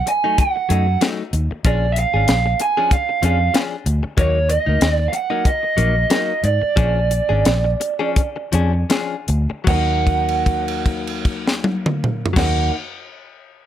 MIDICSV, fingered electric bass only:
0, 0, Header, 1, 3, 480
1, 0, Start_track
1, 0, Key_signature, -6, "minor"
1, 0, Tempo, 633580
1, 1249, Time_signature, 4, 2, 24, 8
1, 4130, Tempo, 668896
1, 5570, Tempo, 722892
1, 6530, Tempo, 785340
1, 9439, End_track
2, 0, Start_track
2, 0, Title_t, "Fingered electric bass"
2, 0, Program_c, 0, 33
2, 530, Note_on_c, 0, 42, 95
2, 722, Note_off_c, 0, 42, 0
2, 1008, Note_on_c, 0, 39, 85
2, 1114, Note_off_c, 0, 39, 0
2, 1248, Note_on_c, 0, 34, 100
2, 1545, Note_off_c, 0, 34, 0
2, 1621, Note_on_c, 0, 32, 83
2, 1707, Note_off_c, 0, 32, 0
2, 1729, Note_on_c, 0, 34, 88
2, 1920, Note_off_c, 0, 34, 0
2, 2446, Note_on_c, 0, 41, 104
2, 2637, Note_off_c, 0, 41, 0
2, 2925, Note_on_c, 0, 38, 97
2, 3030, Note_off_c, 0, 38, 0
2, 3165, Note_on_c, 0, 39, 106
2, 3462, Note_off_c, 0, 39, 0
2, 3539, Note_on_c, 0, 38, 85
2, 3624, Note_off_c, 0, 38, 0
2, 3648, Note_on_c, 0, 39, 93
2, 3840, Note_off_c, 0, 39, 0
2, 4363, Note_on_c, 0, 34, 93
2, 4551, Note_off_c, 0, 34, 0
2, 4837, Note_on_c, 0, 44, 92
2, 4942, Note_off_c, 0, 44, 0
2, 5077, Note_on_c, 0, 34, 110
2, 5381, Note_off_c, 0, 34, 0
2, 5456, Note_on_c, 0, 32, 87
2, 5546, Note_off_c, 0, 32, 0
2, 5571, Note_on_c, 0, 34, 92
2, 5757, Note_off_c, 0, 34, 0
2, 6284, Note_on_c, 0, 41, 88
2, 6481, Note_off_c, 0, 41, 0
2, 6764, Note_on_c, 0, 38, 90
2, 6868, Note_off_c, 0, 38, 0
2, 7000, Note_on_c, 0, 39, 92
2, 8568, Note_off_c, 0, 39, 0
2, 8645, Note_on_c, 0, 39, 92
2, 8849, Note_off_c, 0, 39, 0
2, 9439, End_track
3, 0, Start_track
3, 0, Title_t, "Muted fingered electric bass strokes"
3, 1143, Note_on_c, 9, 29, 33
3, 1218, Note_off_c, 9, 29, 0
3, 3060, Note_on_c, 9, 29, 36
3, 3136, Note_off_c, 9, 29, 0
3, 4969, Note_on_c, 9, 29, 33
3, 5040, Note_off_c, 9, 29, 0
3, 9439, End_track
0, 0, End_of_file